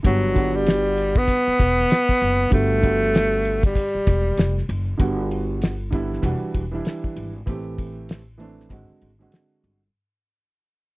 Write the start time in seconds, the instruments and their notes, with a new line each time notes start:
0.03 upright bass G1, grand piano D3 G3 B3 F#4, alto saxophone F#3, kick, ride
0.34 grand piano D3 G3 B3 F#4, kick, ride
0.56 alto saxophone G3
0.66 snare, hi-hat pedal, ride
0.98 ride
1.16 alto saxophone B3, kick
1.28 kick, ride
1.48 muted upright bass stroke
1.59 upright bass E1, kick, ride
1.80 snare
1.90 snare, hi-hat pedal, ride
2.09 kick, snare
2.21 upright bass F#1, ride
2.50 upright bass G1, grand piano D3 G3 B3 F#4, alto saxophone A3, kick, ride
2.81 grand piano D3 G3 B3 F#4, kick, ride
3.02 snare
3.14 snare, hi-hat pedal, ride
3.45 ride
3.63 alto saxophone G3, kick, snare, ride
3.75 kick, ride
3.95 muted upright bass stroke
4.07 upright bass E1, kick, ride
4.37 upright bass F1, snare, hi-hat pedal, ride
4.58 snare
4.69 upright bass F#1, ride
4.98 upright bass G1, grand piano D3 G3 B3 F#4, kick, ride
5.31 ride
5.62 snare, hi-hat pedal, ride
5.91 grand piano D3 G3 B3 E4, kick, ride
6.13 snare
6.22 upright bass E1, grand piano E3 G3 D4 F#4, kick, ride
6.42 muted upright bass stroke
6.54 upright bass E1, kick, ride
6.71 grand piano E3 G3 D4 E4
6.85 snare, hi-hat pedal, ride
7.04 kick
7.16 upright bass G#1, ride
7.46 upright bass A1, grand piano E3 A3 C4 G4, kick, ride
7.78 kick, ride
8.09 snare, hi-hat pedal, ride
8.38 grand piano E3 A3 C4 D4, ride
8.60 snare
8.69 upright bass G#1, grand piano D3 G#3 C4 F#4, kick, ride
8.90 muted upright bass stroke
9.01 upright bass G#1, ride
9.19 grand piano D3 G#3 C4 F#4, ride
9.32 snare, hi-hat pedal, ride
9.64 upright bass G1, ride